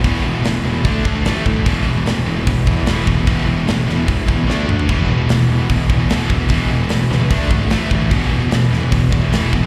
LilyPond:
<<
  \new Staff \with { instrumentName = "Distorted electric guitar" } { \clef bass \time 4/4 \key d \dorian \tempo 4 = 149 <e, b, e>8 <e, b,>16 <e, b,>16 <e, b,>8 <e, b,>16 <e, b,>16 <d a d'>8 <d a>16 <d a>16 <a, e a>8 <a, e>16 <a, e>16 | <e, b, e>8 <e, b,>16 <e, b,>16 <e, b,>8 <e, b,>16 <e, b,>16 <e, b,>8 <e, b,>16 <e, b,>16 <e, b, e>8 <e, b,>16 <e, b,>16 | <e, b, e>8 <e, b,>16 <e, b,>16 <e, b,>8 <e, b,>16 <e, b,>16 <e, b,>8 <e, b,>16 <e, b,>16 <d a d'>8 <d a>16 <d a>16 | <e, b, e>8 <e, b,>16 <e, b,>16 <e, b,>8 <e, b,>16 <e, b,>16 <e, b,>8 <e, b,>16 <e, b,>16 <e, b, e>8 <e, b,>16 <e, b,>16 |
<e, b, e>8 <e, b,>16 <e, b,>16 <e, b,>8 <e, b,>16 <e, b,>16 <d a d'>8 <d a>16 <d a>16 <a, e a>8 <a, e>16 <a, e>16 | <e, b, e>8 <e, b,>16 <e, b,>16 <e, b,>8 <e, b,>16 <e, b,>16 <e, b,>8 <e, b,>16 <e, b,>16 <e, b, e>8 <e, b,>16 b,16 | }
  \new Staff \with { instrumentName = "Distorted electric guitar" } { \clef bass \time 4/4 \key d \dorian <e, b, e>8 <e, b,>16 <e, b,>16 <e, b,>8 <e, b,>16 <e, b,>16 <d a d'>8 <d a>16 <d a>16 <a, e a>8 <a, e>16 <a, e>16 | <e, b, e>8 <e, b,>16 <e, b,>16 <e, b,>8 <e, b,>16 <e, b,>16 <e, b,>8 <e, b,>16 <e, b,>16 <e, b, e>8 <e, b,>16 <e, b,>16 | <e, b, e>8 <e, b,>16 <e, b,>16 <e, b,>8 <e, b,>16 <e, b,>16 <e, b,>8 <e, b,>16 <e, b,>16 <d a d'>8 <d a>16 <d a>16 | <e, b, e>8 <e, b,>16 <e, b,>16 <e, b,>8 <e, b,>16 <e, b,>16 <e, b,>8 <e, b,>16 <e, b,>16 <e, b, e>8 <e, b,>16 <e, b,>16 |
<e, b, e>8 <e, b,>16 <e, b,>16 <e, b,>8 <e, b,>16 <e, b,>16 <d a d'>8 <d a>16 <d a>16 <a, e a>8 <a, e>16 <a, e>16 | <e, b, e>8 <e, b,>16 <e, b,>16 <e, b,>8 <e, b,>16 <e, b,>16 <e, b,>8 <e, b,>16 <e, b,>16 <e, b, e>8 <e, b,>16 <e, b,>16 | }
  \new Staff \with { instrumentName = "Distorted electric guitar" } { \clef bass \time 4/4 \key d \dorian <e, b, e>8 <e, b, e>8 <e, b, e>8 <e, b, e>8 <d a d'>8 <d a d'>8 <a, e a>8 <a, e a>8 | <e, b, e>8 <e, b, e>8 <e, b, e>8 <e, b, e>8 <e, b, e>8 <e, b, e>8 <e, b, e>8 <e, b, e>8 | <e, b, e>8 <e, b, e>8 <e, b, e>8 <e, b, e>8 <e, b, e>8 <e, b, e>8 <d a d'>8 <d a d'>8 | <e, b, e>8 <e, b, e>8 <e, b, e>8 <e, b, e>8 <e, b, e>8 <e, b, e>8 <e, b, e>8 <e, b, e>8 |
<e, b, e>8 <e, b, e>8 <e, b, e>8 <e, b, e>8 <d a d'>8 <d a d'>8 <a, e a>8 <a, e a>8 | <e, b, e>8 <e, b, e>8 <e, b, e>8 <e, b, e>8 <e, b, e>8 <e, b, e>8 <e, b, e>8 <e, b, e>8 | }
  \new Staff \with { instrumentName = "Picked electric bass" } { \clef bass \time 4/4 \key d \dorian e,,8 e,,8 e,,8 e,,8 d,8 d,8 a,,8 d,8 | e,,8 e,,8 e,,8 e,,8 e,,8 e,8 e,,8 e,,8 | e,,8 e,,8 e,,8 e,,8 e,,8 e,8 d,8 d,8 | e,,8 e,,8 e,,8 e,,8 e,,8 e,8 e,,8 e,,8 |
e,,8 e,,8 e,,8 cis,8 d,8 gis,,8 a,,8 d,8 | e,,8 e,,8 e,,8 e,,8 e,,8 e,8 e,,8 e,,8 | }
  \new DrumStaff \with { instrumentName = "Drums" } \drummode { \time 4/4 <hho bd>4 <hho sn>4 <hho bd>8 bd8 <hho sn>8 bd8 | <hho bd>4 <hho sn>4 <hho bd>8 bd8 <hho sn>8 bd8 | <hho bd>4 <hho sn>8 sn8 <hho bd>8 bd8 sn8 toml16 tomfh16 | <cymc bd>4 <hho sn>4 <hho bd>8 bd8 <hho sn>8 bd8 |
<hho bd>4 <hho sn>8 sn8 <hho bd>8 bd8 <hho sn>8 bd8 | <hho bd>4 <hho sn>8 sn8 <hho bd>8 bd8 <hho sn>8 bd8 | }
>>